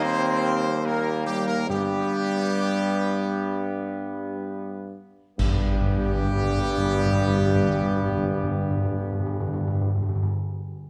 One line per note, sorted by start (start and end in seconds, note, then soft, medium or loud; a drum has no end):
0.00 1.71 D#2 loud
0.00 0.81 G3 loud
0.00 0.81 A#3 loud
0.00 0.85 C5 loud
0.04 0.69 C4 loud
0.84 1.65 G3 loud
0.84 1.65 A#3 loud
0.84 1.24 A#3 loud
0.84 1.27 A#4 loud
1.26 1.46 G3 loud
1.26 1.46 G4 loud
1.48 1.68 A#3 loud
1.48 1.68 A#4 loud
1.69 4.97 G2 loud
1.69 2.99 G2 loud
1.69 4.93 G3 loud
1.69 4.86 G3 loud
1.69 4.97 B3 loud
1.69 4.86 G4 loud
5.39 9.93 G2 loud
5.39 5.46 G2 loud
5.39 9.93 G3 loud
5.39 9.93 B3 loud
5.39 9.93 G4 loud
5.39 concert bass drum medium
5.39 crash medium
5.46 5.53 G2 loud
5.53 5.60 G2 loud
5.60 5.66 G2 loud
5.67 5.74 G2 loud
5.74 5.80 G2 loud
5.81 5.88 G2 loud
5.88 5.95 G2 medium
5.95 6.02 G2 loud
6.02 6.08 G2 medium
6.08 6.15 G2 loud
6.15 6.22 G2 medium
6.22 6.29 G2 loud
6.29 6.36 G2 medium
6.36 6.43 G2 loud
6.43 6.50 G2 loud
6.50 6.57 G2 loud
6.57 6.63 G2 loud
6.63 6.70 G2 loud
6.70 6.77 G2 loud
6.77 6.84 G2 loud
6.85 6.91 G2 loud
6.91 6.98 G2 loud
6.98 7.05 G2 loud
7.06 7.12 G2 loud
7.13 7.20 G2 loud
7.20 7.27 G2 loud
7.27 7.34 G2 loud
7.34 7.41 G2 loud
7.41 7.48 G2 loud
7.48 7.55 G2 loud
7.55 7.62 G2 loud
7.62 7.68 G2 loud
7.68 7.75 G2 loud
7.75 7.82 G2 loud
7.82 7.89 G2 loud
7.89 7.96 G2 loud
7.96 8.03 G2 loud
8.03 8.10 G2 loud
8.10 8.16 G2 loud
8.16 8.23 G2 loud
8.23 8.29 G2 medium
8.29 8.36 G2 loud
8.37 8.43 G2 loud
8.43 8.50 G2 loud
8.50 8.57 G2 loud
8.57 8.64 G2 loud
8.64 8.70 G2 medium
8.70 8.77 G2 loud
8.77 8.84 G2 loud
8.85 8.91 G2 loud
8.91 8.98 G2 loud
8.98 9.05 G2 loud
9.05 9.12 G2 loud
9.12 9.19 G2 loud
9.20 9.26 G2 loud
9.26 9.33 G2 loud
9.33 9.40 G2 loud
9.40 9.47 G2 loud
9.47 9.53 G2 loud
9.53 9.60 G2 loud
9.60 9.67 G2 loud
9.67 9.74 G2 loud
9.74 9.81 G2 loud
9.81 9.88 G2 loud
9.88 9.95 G2 medium
9.95 10.02 G2 loud
10.02 10.09 G2 loud
10.09 10.15 G2 loud
10.15 10.22 G2 loud
10.23 10.29 G2 loud